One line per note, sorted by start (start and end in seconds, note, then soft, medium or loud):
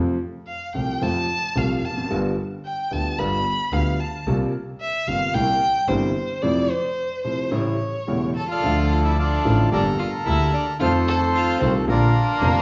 0.00 0.16 F2 medium
0.00 0.16 C3 medium
0.00 0.16 F3 medium
0.00 0.16 A3 medium
0.00 0.16 F4 medium
0.47 0.73 F5 medium
0.74 0.98 C2 medium
0.74 0.98 C3 medium
0.74 0.98 F3 soft
0.74 0.98 A3 soft
0.74 0.98 F4 soft
0.74 1.04 G5 medium
1.01 1.25 F2 medium
1.01 1.25 C3 medium
1.01 1.25 F3 medium
1.01 1.25 A3 medium
1.01 1.25 F4 medium
1.01 1.59 A5 loud
1.55 1.79 C2 medium
1.55 1.80 C2 medium
1.55 1.79 C3 medium
1.55 1.79 F3 medium
1.55 1.79 A3 medium
1.55 1.79 F4 medium
1.55 1.86 F5 medium
1.84 2.10 F1 soft
1.84 2.12 A5 medium
1.90 1.97 E2 soft
1.97 2.04 F2 medium
2.04 2.11 F#2 medium
2.10 2.34 G1 medium
2.10 2.33 G2 medium
2.10 2.33 D3 medium
2.10 2.33 G3 medium
2.10 2.33 B3 medium
2.10 2.34 F4 medium
2.65 2.94 G5 medium
2.91 3.14 D2 medium
2.91 3.15 D2 medium
2.91 3.14 D3 medium
2.91 3.15 G3 soft
2.91 3.14 B3 soft
2.91 3.15 F4 soft
2.91 3.20 A5 medium
3.18 3.41 G1 medium
3.18 3.42 G1 medium
3.18 3.42 G2 medium
3.18 3.42 D3 medium
3.18 3.42 G3 medium
3.18 3.42 B3 medium
3.18 3.42 F4 medium
3.18 3.75 B5 loud
3.72 3.95 D2 medium
3.72 3.96 D2 medium
3.72 3.95 D3 medium
3.72 3.95 G3 medium
3.72 3.96 B3 medium
3.72 3.96 F4 medium
3.72 4.01 F5 medium
4.00 4.27 A5 medium
4.27 4.50 C2 medium
4.27 4.50 C3 medium
4.27 4.50 G3 medium
4.27 4.50 A#3 medium
4.27 4.50 F4 medium
4.81 5.09 E5 medium
5.08 5.30 G1 medium
5.08 5.31 G1 medium
5.08 5.30 G2 medium
5.08 5.30 C3 soft
5.08 5.30 G3 soft
5.08 5.30 A#3 soft
5.08 5.30 F4 medium
5.08 5.36 F5 loud
5.34 5.57 C2 medium
5.34 5.58 C2 medium
5.34 5.57 C3 medium
5.34 5.57 G3 medium
5.34 5.57 A#3 medium
5.34 5.57 E4 medium
5.34 5.89 G5 loud
5.88 6.12 G1 medium
5.88 6.11 G2 medium
5.88 6.11 C3 medium
5.88 6.11 G3 medium
5.88 6.12 A#3 medium
5.88 6.12 E4 medium
5.88 6.43 C5 medium
6.42 6.66 F2 medium
6.42 6.66 C3 medium
6.42 6.66 F3 medium
6.42 6.66 A3 medium
6.42 6.66 E4 medium
6.42 6.72 D5 medium
6.70 7.23 C5 medium
7.24 7.48 C2 soft
7.24 7.48 C3 medium
7.24 7.48 F3 soft
7.24 7.48 A3 soft
7.24 7.48 E4 soft
7.24 7.53 C5 medium
7.51 7.75 A1 medium
7.51 7.75 A2 medium
7.51 7.75 C#3 medium
7.51 7.75 G3 medium
7.51 7.75 A3 medium
7.51 7.75 E4 medium
7.51 8.35 C#5 medium
8.07 8.31 E1 medium
8.07 8.31 E2 medium
8.07 8.31 C#3 medium
8.07 8.31 G3 medium
8.07 8.31 A3 medium
8.07 8.31 E4 medium
8.36 8.49 A4 medium
8.36 8.49 A5 medium
8.49 9.00 F4 medium
8.49 9.18 A4 medium
8.49 9.17 D5 medium
8.49 9.01 F5 loud
8.62 9.41 D2 loud
8.62 9.42 D2 medium
8.62 8.63 D3 medium
8.62 9.42 D3 medium
8.62 9.41 F3 medium
8.62 9.42 A3 medium
8.66 9.43 F4 medium
9.05 9.18 E4 medium
9.05 9.17 E5 loud
9.18 9.69 D4 medium
9.18 9.70 F4 medium
9.18 9.70 A4 medium
9.18 9.69 D5 loud
9.45 9.68 A1 medium
9.45 9.68 A1 loud
9.45 9.68 A2 medium
9.45 9.68 D3 medium
9.45 9.68 F3 medium
9.45 9.68 A3 medium
9.45 9.68 F4 medium
9.72 9.95 G1 medium
9.72 9.95 G1 loud
9.72 9.95 G2 medium
9.72 9.95 D3 medium
9.72 9.95 A3 medium
9.72 9.95 A#3 medium
9.72 9.85 D4 medium
9.72 9.95 G4 medium
9.72 10.77 A4 medium
9.72 10.77 A#4 medium
9.72 9.84 D5 loud
9.98 10.11 F4 medium
9.98 10.11 F5 medium
10.25 10.50 D2 medium
10.25 10.50 D2 loud
10.25 10.49 D3 medium
10.25 10.49 A3 medium
10.25 10.50 A#3 medium
10.25 10.51 E4 medium
10.25 10.50 G4 medium
10.25 10.54 E5 loud
10.53 10.66 D4 medium
10.53 10.66 D5 loud
10.79 11.57 F2 loud
10.79 11.57 F2 medium
10.79 11.56 D#3 medium
10.79 11.57 F3 medium
10.79 11.57 A3 medium
10.79 11.58 C4 medium
10.79 10.92 F4 medium
10.79 11.58 F4 medium
10.79 11.85 A4 medium
10.79 11.60 C5 medium
10.79 10.93 F5 loud
11.08 11.20 A4 medium
11.08 11.20 A5 loud
11.34 11.59 F4 loud
11.34 11.60 F5 loud
11.59 11.84 C2 medium
11.59 11.84 C2 loud
11.59 11.84 C3 medium
11.59 11.84 D#3 medium
11.59 11.84 A3 medium
11.59 11.72 C4 medium
11.59 11.84 C4 medium
11.59 11.84 F4 medium
11.59 11.74 C5 loud
11.86 12.11 A#1 loud
11.86 12.11 A#2 medium
11.86 12.10 D3 medium
11.86 12.11 F3 medium
11.86 12.62 A#3 medium
11.86 12.11 A#3 medium
11.86 12.11 F4 medium
11.86 12.62 A#4 loud
11.91 12.62 D4 medium
11.91 12.62 F4 medium
12.41 12.62 F1 medium
12.41 12.62 F1 loud
12.41 12.62 F2 medium
12.41 12.62 D3 medium
12.41 12.62 F3 medium
12.41 12.62 A#3 medium
12.41 12.62 F4 medium